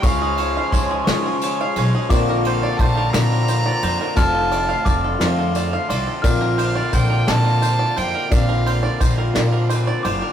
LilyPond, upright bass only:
\new Staff \with { instrumentName = "Upright bass" } { \clef bass \time 6/8 \key bes \major \tempo 4. = 58 des,4 des,8 des4 b,,16 r16 | bes,,4 bes,,8 bes,4 f,16 r16 | f,,4 f,,8 f,4 c,16 r16 | bes,,4 bes,,8 bes,4 f,16 r16 |
bes,,4 bes,,8 bes,4 ges,,16 r16 | }